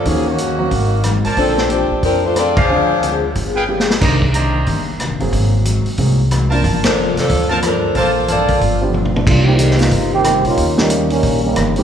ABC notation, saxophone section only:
X:1
M:4/4
L:1/8
Q:"Swing" 1/4=182
K:Gm
V:1 name="Saxophone section"
[F,B,_D_A] [E,B,D_G]6 z | [F,CDA]2 [F,CDG]2 [F,CDB] [A,DFc] [CFAd] [D_Acf]- | [D_Acf]3 z4 z | z8 |
z8 | z [F,DAB]2 [F,B,DA]2 z [F,DAB]2 | [B,FAc]2 [B,FAd]3 z3 | [K:Cm] z8 |
z8 |]